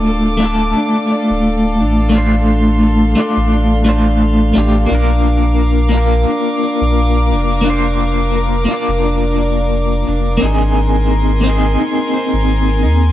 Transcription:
Already playing: sub bass D1, clean electric guitar A3 D4 F4 A4, harp D4 F4 C5, violin section A4 F5 D6
0.07 harp A4
0.37 clean electric guitar A3 D4
0.43 clean electric guitar F4 A4
0.76 harp D4
1.11 harp D5
1.30 sub bass D1
1.80 sub bass A1, harp D4
2.09 clean electric guitar A3 D4
2.14 harp D4, clean electric guitar F4 C5, violin section C6
2.83 harp A4
3.15 clean electric guitar A3 D4 F4
3.20 clean electric guitar D5
3.37 sub bass A1
3.52 harp D4
3.85 clean electric guitar A3 D4 F4, harp D5
3.89 clean electric guitar C5
4.54 sub bass A1, clean electric guitar A3 D4 F4, harp D4
4.58 clean electric guitar G4
4.86 clean electric guitar A#3 D4, harp D4
4.90 sub bass A#1, clean electric guitar F4, violin section A#4 D6
4.95 clean electric guitar A#4
5.59 harp A#4
5.89 clean electric guitar A#3 D4
5.95 clean electric guitar F4 A#4
6.28 harp D4
6.63 harp D5
6.81 sub bass A#1
7.31 sub bass F1, harp D4
7.61 clean electric guitar A#3 D4
7.66 harp D4, clean electric guitar F4
7.70 clean electric guitar C5
8.35 harp A#4
8.65 clean electric guitar A#3 D4
8.71 clean electric guitar F4 D5
8.88 sub bass F1
9.04 harp D4
9.38 harp D5
10.07 sub bass F1, harp D4
10.37 clean electric guitar A#3 C4
10.41 sub bass G#1, harp D#4, clean electric guitar D#4, violin section A#4 G#5 C6
10.45 clean electric guitar G#4
11.10 harp A#4
11.41 clean electric guitar A#3 C4
11.47 clean electric guitar D#4 G#4
11.80 harp D#4
12.14 harp C5
12.33 sub bass G#1
12.83 sub bass D#2, harp D#4

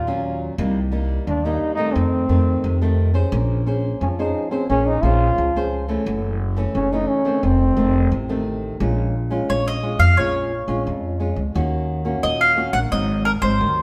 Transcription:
Already playing: upright bass D#2, nylon-string guitar A#2, trombone F4
0.07 nylon-string guitar F#3 C#4 F4
0.58 upright bass C2, nylon-string guitar C3 G3 A#3 D#4
0.92 nylon-string guitar G3 A#3 D#4
1.27 upright bass D#2, nylon-string guitar G2, trombone D4
1.45 nylon-string guitar G3 A#3 D#4, trombone D#4
1.75 nylon-string guitar D#3 A3 C4, trombone D#4
1.94 upright bass F2, nylon-string guitar F2, trombone C4
2.29 upright bass F2, nylon-string guitar D#3 A3 C4
2.64 upright bass F2, nylon-string guitar C3
2.81 nylon-string guitar D#3 A3 C4
3.14 nylon-string guitar C#4 G#4 C5
3.32 upright bass A#1, nylon-string guitar A#3
3.66 nylon-string guitar C#4 G#4 C5
4.01 upright bass F2, nylon-string guitar F3, trombone C#4
4.19 nylon-string guitar C#4 G#4 C5, trombone D#4
4.51 trombone C4, nylon-string guitar C#4 G#4 C5
4.69 upright bass A#1, nylon-string guitar A#3 C#4 G#4 C5, trombone C#4
4.86 trombone D#4
5.02 upright bass A#1, nylon-string guitar C#4 G#4 C5, trombone F4
5.38 upright bass C#2, nylon-string guitar F3
5.56 nylon-string guitar C#4 G#4 C5
5.88 nylon-string guitar E3 A3 C#4
6.06 upright bass F#1, nylon-string guitar F#2
6.57 nylon-string guitar E3 A3 C#4
6.75 upright bass F#1, nylon-string guitar C#3, trombone C#4
6.92 nylon-string guitar E3 A3 C#4, trombone D#4
7.08 trombone C#4
7.25 nylon-string guitar D#3 A3 C4
7.43 upright bass F1, nylon-string guitar F2, trombone C4
7.77 upright bass F1, nylon-string guitar D#3 A3 C4
8.11 upright bass A1, nylon-string guitar C3
8.29 nylon-string guitar D#3 A3 C4
8.80 upright bass A#1, nylon-string guitar A#2 G#3 C#4 F4
9.30 nylon-string guitar G#3 C#4 F4
9.49 upright bass A#1, nylon-string guitar F2, mandolin C#5
9.68 mandolin D#5
9.83 nylon-string guitar G#3 C#4 F4
9.99 upright bass F2, mandolin F5
10.17 upright bass A#1, nylon-string guitar A#2 G#3 C#4 F4, mandolin C#5
10.68 upright bass A#1, nylon-string guitar G#3 C#4 F4
10.86 nylon-string guitar F2, upright bass F2
11.20 nylon-string guitar G#3 C#4 F4
11.36 upright bass C#2
11.55 upright bass D#2, nylon-string guitar D#3 A#3 C#4 F#4
12.05 nylon-string guitar A#3 C#4 F#4
12.23 upright bass D#2, nylon-string guitar A#2, mandolin D#5
12.41 mandolin F5
12.57 nylon-string guitar A#3 C#4 F#4
12.73 upright bass A#1, mandolin F#5
12.92 upright bass G#1, nylon-string guitar G#2 F#3 C4 D#4, mandolin D#5
13.25 mandolin A#4
13.42 upright bass G#1, nylon-string guitar F#3 C4 D#4, mandolin C5
13.60 upright bass D#2, nylon-string guitar D#3

